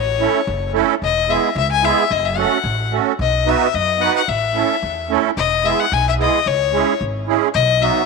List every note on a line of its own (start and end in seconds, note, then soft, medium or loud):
0.00 0.25 A1 loud
0.00 0.70 C#5 medium
0.20 0.40 A3 medium
0.20 0.40 C#4 medium
0.20 0.41 E4 medium
0.20 0.41 A4 medium
0.47 0.80 F#1 loud
0.73 0.94 A3 medium
0.73 0.95 C#4 medium
0.73 0.95 E4 medium
0.73 0.95 A4 loud
1.02 1.34 E1 medium
1.02 1.32 D#5 loud
1.28 1.49 G#3 medium
1.28 1.49 B3 medium
1.28 1.50 E4 medium
1.28 1.50 G#4 medium
1.28 1.56 E5 medium
1.55 1.88 C#2 loud
1.55 1.69 E5 medium
1.71 1.86 G#5 loud
1.82 2.03 G#3 medium
1.82 2.04 B3 medium
1.82 2.04 E4 medium
1.82 2.04 G#4 medium
1.82 2.13 E5 loud
2.10 2.43 F#1 loud
2.10 2.26 D#5 medium
2.25 2.38 E5 medium
2.36 2.58 A3 medium
2.36 2.58 C#4 medium
2.36 2.58 F#4 medium
2.36 2.59 A4 medium
2.36 2.91 F#5 medium
2.64 2.97 A1 loud
2.91 3.12 A3 medium
2.91 3.13 C#4 medium
2.91 3.13 F#4 medium
2.91 3.13 A4 medium
3.19 3.52 B1 loud
3.19 3.50 D#5 medium
3.45 3.67 B3 medium
3.45 3.67 D#4 medium
3.45 3.67 F#4 medium
3.45 3.68 B4 medium
3.45 3.76 E5 medium
3.74 4.07 F#2 medium
3.74 4.03 D#5 loud
3.99 4.21 B3 medium
3.99 4.21 D#4 medium
3.99 4.22 F#4 medium
3.99 4.22 B4 medium
3.99 4.15 F#5 loud
4.15 4.30 F#5 medium
4.28 4.61 A1 medium
4.28 5.10 E5 medium
4.53 4.75 A3 medium
4.53 4.76 C#4 medium
4.53 4.76 E4 medium
4.53 4.76 A4 medium
4.83 5.15 E2 medium
5.09 5.30 A3 medium
5.09 5.30 C#4 medium
5.09 5.31 E4 medium
5.09 5.31 A4 loud
5.37 5.70 E1 medium
5.37 5.67 D#5 loud
5.64 5.85 G#3 medium
5.64 5.85 B3 medium
5.64 5.85 E4 medium
5.64 5.86 G#4 medium
5.64 5.81 E5 medium
5.79 5.95 F#5 loud
5.92 6.24 B1 loud
5.92 6.06 G#5 loud
6.09 6.14 E5 medium
6.18 6.39 G#3 medium
6.18 6.39 B3 medium
6.18 6.39 E4 medium
6.18 6.40 G#4 medium
6.18 6.49 D#5 medium
6.46 6.79 C#2 loud
6.46 7.01 C#5 loud
6.72 6.93 G#3 medium
6.72 6.93 C#4 medium
6.72 6.94 E4 medium
6.72 6.94 G#4 medium
7.01 7.33 G#1 medium
7.27 7.48 G#3 medium
7.27 7.48 C#4 medium
7.27 7.48 E4 medium
7.27 7.49 G#4 medium
7.54 7.87 B1 loud
7.54 7.84 D#5 loud
7.80 8.02 F#3 medium
7.80 8.02 B3 medium
7.80 8.02 D#4 medium
7.80 8.03 F#4 medium
7.80 8.06 E5 loud